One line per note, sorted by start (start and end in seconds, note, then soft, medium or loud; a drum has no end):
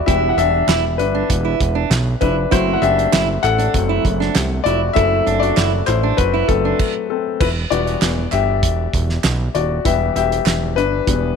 0.00 0.06 E3 medium
0.00 0.07 G3 soft
0.00 0.07 B3 medium
0.00 2.51 F#4 medium
0.00 0.08 G4 medium
0.00 2.54 D5 medium
0.00 0.06 E5 loud
0.06 0.33 E1 loud
0.06 2.47 E3 medium
0.06 0.35 G3 medium
0.06 2.48 B3 medium
0.06 0.37 E4 loud
0.06 0.30 G4 medium
0.06 0.31 E5 medium
0.06 kick loud
0.06 closed hi-hat medium
0.29 0.37 F#5 medium
0.37 0.63 E1 loud
0.37 0.67 D4 medium
0.37 0.96 G4 medium
0.37 0.95 E5 loud
0.37 closed hi-hat medium
0.68 1.00 E1 medium
0.68 0.83 E4 medium
0.68 snare loud
0.68 clap medium
0.68 closed hi-hat medium
0.98 1.24 G1 medium
0.98 2.17 D4 medium
0.98 2.19 B4 medium
0.98 closed hi-hat medium
1.15 1.29 D4 medium
1.30 1.55 E1 loud
1.30 kick loud
1.30 closed hi-hat medium
1.45 1.59 E4 medium
1.60 1.85 E1 medium
1.60 kick loud
1.60 closed hi-hat medium
1.75 1.90 D4 medium
1.90 2.16 B1 loud
1.90 snare loud
1.90 clap medium
1.90 closed hi-hat medium
2.21 2.46 F1 medium
2.21 2.50 D4 medium
2.21 2.35 E4 medium
2.21 2.52 B4 medium
2.21 kick medium
2.21 closed hi-hat medium
2.51 2.77 F#1 loud
2.51 3.39 A3 soft
2.51 3.40 C4 medium
2.51 2.80 E4 loud
2.51 2.74 F#4 medium
2.51 2.76 C5 medium
2.51 kick loud
2.51 closed hi-hat loud
2.73 2.81 F#5 medium
2.82 3.07 F#1 loud
2.82 3.11 D4 medium
2.82 3.40 G4 medium
2.82 3.39 E5 loud
2.82 closed hi-hat medium
2.99 closed hi-hat medium
3.12 3.38 F#1 loud
3.12 3.27 E4 medium
3.12 snare loud
3.12 clap medium
3.12 closed hi-hat medium
3.43 3.68 A1 medium
3.43 4.31 A4 medium
3.43 4.31 F#5 loud
3.43 clap medium
3.43 closed hi-hat medium
3.58 3.73 D4 medium
3.58 closed hi-hat medium
3.73 3.99 F#1 loud
3.73 4.01 F#3 medium
3.73 4.01 A3 soft
3.73 4.02 C4 medium
3.73 kick loud
3.73 closed hi-hat medium
3.89 4.04 E4 medium
4.05 4.30 F#1 loud
4.05 kick loud
4.05 closed hi-hat medium
4.20 4.34 D4 medium
4.20 snare soft
4.35 4.60 C2 medium
4.35 snare medium
4.35 clap medium
4.35 closed hi-hat medium
4.64 4.90 F1 medium
4.64 4.80 E4 medium
4.64 4.94 F#4 medium
4.64 4.96 D5 loud
4.64 closed hi-hat medium
4.93 5.21 F#1 loud
4.93 5.83 F#3 medium
4.93 5.83 A3 soft
4.93 5.83 C4 medium
4.93 5.25 E4 loud
4.93 5.38 A4 medium
4.93 5.42 E5 loud
4.93 kick loud
4.93 closed hi-hat medium
5.26 5.52 F#1 loud
5.26 5.55 D4 medium
5.26 closed hi-hat medium
5.40 5.85 F#4 medium
5.40 5.88 D5 loud
5.40 closed hi-hat medium
5.57 5.82 F#1 loud
5.57 5.71 E4 medium
5.57 snare loud
5.57 clap medium
5.57 closed hi-hat medium
5.86 6.13 A1 medium
5.86 6.16 E4 medium
5.86 6.18 C5 medium
5.86 clap medium
5.86 closed hi-hat medium
6.03 6.18 D4 medium
6.17 6.43 F#1 medium
6.17 6.47 F#4 medium
6.17 6.49 B4 medium
6.17 kick loud
6.17 closed hi-hat medium
6.33 6.48 E4 medium
6.48 6.74 F#1 loud
6.48 6.76 F#3 soft
6.48 6.76 A3 soft
6.48 7.06 C4 medium
6.48 7.06 A4 medium
6.48 kick loud
6.48 closed hi-hat medium
6.65 6.79 D4 medium
6.79 kick loud
6.79 crash medium
7.10 7.39 C4 medium
7.10 7.41 A4 medium
7.40 7.66 E1 loud
7.40 7.48 E4 medium
7.40 7.47 B4 medium
7.40 kick loud
7.40 crash medium
7.70 7.96 E1 loud
7.70 8.59 E3 medium
7.70 8.59 G3 medium
7.70 8.59 B3 medium
7.70 8.29 F#4 medium
7.70 8.34 D5 loud
7.70 closed hi-hat medium
7.87 closed hi-hat medium
8.02 8.27 E1 loud
8.02 snare loud
8.02 clap medium
8.02 closed hi-hat medium
8.31 8.65 G1 medium
8.31 9.20 G4 medium
8.31 9.19 E5 medium
8.31 clap medium
8.31 closed hi-hat medium
8.63 8.88 E1 loud
8.63 kick medium
8.63 closed hi-hat medium
8.94 9.18 E1 loud
8.94 kick loud
8.94 closed hi-hat medium
9.09 snare soft
9.24 9.49 B1 loud
9.24 snare loud
9.24 clap medium
9.24 closed hi-hat medium
9.55 9.80 D#1 medium
9.55 9.83 F#4 medium
9.55 9.86 D5 medium
9.55 closed hi-hat medium
9.85 10.10 E1 loud
9.85 10.72 E3 medium
9.85 10.73 G3 medium
9.85 10.73 B3 medium
9.85 10.14 G4 medium
9.85 10.14 E5 medium
9.85 kick loud
9.85 closed hi-hat loud
10.16 10.41 E1 loud
10.16 10.73 G4 medium
10.16 10.79 E5 medium
10.16 closed hi-hat medium
10.32 closed hi-hat medium
10.46 10.77 E1 medium
10.46 snare loud
10.46 clap medium
10.46 closed hi-hat medium
10.76 11.01 G1 medium
10.76 11.36 D4 medium
10.76 11.36 B4 loud
10.76 closed hi-hat medium
11.07 11.33 E1 loud
11.07 11.34 E3 medium
11.07 11.35 G3 soft
11.07 11.35 B3 medium
11.07 kick loud
11.07 closed hi-hat loud